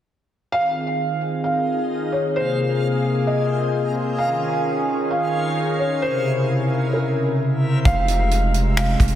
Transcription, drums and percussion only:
7.85 kick loud
7.85 closed hi-hat medium
8.08 closed hi-hat medium
8.31 closed hi-hat medium
8.54 closed hi-hat medium
8.77 finger snap loud
8.77 closed hi-hat medium
9.00 kick medium
9.00 closed hi-hat medium
9.08 closed hi-hat soft

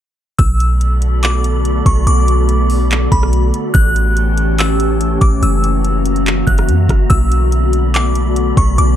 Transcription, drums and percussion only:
0.39 kick loud
0.39 closed hi-hat medium
0.60 closed hi-hat medium
0.81 closed hi-hat medium
1.02 closed hi-hat medium
1.23 clap loud
1.23 closed hi-hat medium
1.44 closed hi-hat medium
1.65 closed hi-hat medium
1.86 kick medium
1.86 closed hi-hat medium
2.07 closed hi-hat medium
2.28 closed hi-hat medium
2.49 closed hi-hat medium
2.70 open hi-hat medium
2.91 clap loud
2.91 closed hi-hat medium
3.12 kick medium
3.12 closed hi-hat medium
3.23 cross-stick medium
3.33 closed hi-hat medium
3.54 closed hi-hat medium
3.75 kick loud
3.75 closed hi-hat medium
3.96 closed hi-hat medium
4.17 closed hi-hat medium
4.38 closed hi-hat medium
4.59 clap loud
4.59 closed hi-hat medium
4.80 closed hi-hat medium
5.01 closed hi-hat medium
5.22 kick medium
5.22 closed hi-hat medium
5.43 closed hi-hat medium
5.64 closed hi-hat medium
5.85 closed hi-hat medium
6.06 closed hi-hat medium
6.16 closed hi-hat soft
6.26 clap loud
6.26 closed hi-hat medium
6.47 kick medium
6.47 closed hi-hat soft
6.58 cross-stick medium
6.58 closed hi-hat medium
6.69 closed hi-hat medium
6.89 kick medium
6.89 cross-stick medium
6.89 closed hi-hat medium
7.10 kick loud
7.10 closed hi-hat medium
7.32 closed hi-hat medium
7.52 closed hi-hat medium
7.73 closed hi-hat medium
7.94 clap loud
7.94 closed hi-hat medium
8.15 closed hi-hat medium
8.36 closed hi-hat medium
8.57 kick loud
8.57 closed hi-hat medium
8.78 closed hi-hat medium

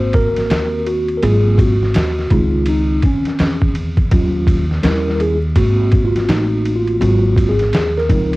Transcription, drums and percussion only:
0.13 kick medium
0.13 ride medium
0.36 snare soft
0.36 ride soft
0.50 snare loud
0.50 hi-hat pedal soft
0.50 ride medium
0.87 ride soft
1.08 ride soft
1.23 ride medium
1.58 kick medium
1.58 ride medium
1.83 snare soft
1.94 snare loud
1.94 hi-hat pedal medium
1.94 ride medium
2.19 snare soft
2.30 kick loud
2.30 ride medium
2.66 ride medium
3.02 kick medium
3.02 ride medium
3.25 snare soft
3.25 ride soft
3.39 snare loud
3.39 hi-hat pedal soft
3.39 ride medium
3.62 kick medium
3.75 ride soft
3.97 kick medium
3.97 ride soft
4.11 kick loud
4.11 ride medium
4.47 kick medium
4.47 ride medium
4.71 snare soft
4.83 snare loud
4.83 hi-hat pedal soft
4.83 ride medium
5.08 snare soft
5.20 ride medium
5.56 kick medium
5.56 ride medium
5.92 kick medium
5.92 ride medium
6.16 snare soft
6.16 ride soft
6.29 snare loud
6.29 hi-hat pedal soft
6.29 ride medium
6.66 ride soft
6.88 ride soft
7.02 ride medium
7.36 kick medium
7.36 ride medium
7.59 snare soft
7.59 ride soft
7.73 snare loud
7.73 hi-hat pedal medium
7.73 ride medium
7.97 snare soft
8.09 kick loud
8.09 ride medium
8.33 ride soft

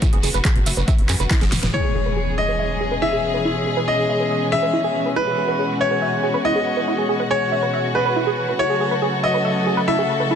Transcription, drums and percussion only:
0.02 kick loud
0.02 closed hi-hat medium
0.02 mid tom medium
0.02 shekere soft
0.13 closed hi-hat soft
0.23 open hi-hat loud
0.23 shekere medium
0.34 shekere soft
0.45 kick loud
0.45 clap loud
0.45 closed hi-hat medium
0.45 shekere soft
0.56 closed hi-hat soft
0.56 mid tom medium
0.66 open hi-hat loud
0.66 shekere medium
0.77 closed hi-hat soft
0.77 shekere medium
0.88 kick loud
0.88 closed hi-hat medium
0.88 shekere soft
0.99 closed hi-hat soft
1.09 clap medium
1.09 open hi-hat loud
1.09 shekere loud
1.20 closed hi-hat soft
1.20 shekere medium
1.31 kick loud
1.31 snare medium
1.31 clap loud
1.31 closed hi-hat medium
1.31 shekere soft
1.41 snare medium
1.41 closed hi-hat soft
1.52 snare medium
1.52 open hi-hat loud
1.52 mid tom medium
1.52 shekere medium
1.63 snare medium
1.63 closed hi-hat soft
1.63 mid tom medium
1.63 shekere soft

